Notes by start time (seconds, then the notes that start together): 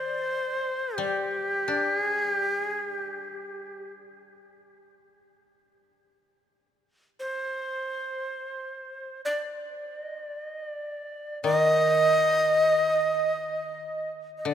Already playing: D#3 C5
0.96 G3 G4
1.68 D4
2.04 G#4
2.26 G4
2.63 G#4
2.85 G4
7.20 C5
9.25 D5
10.04 D#5
10.20 D5
10.47 D#5
10.63 D5
11.43 D#3 D5
11.55 D#5
14.38 D#5
14.45 D3 D5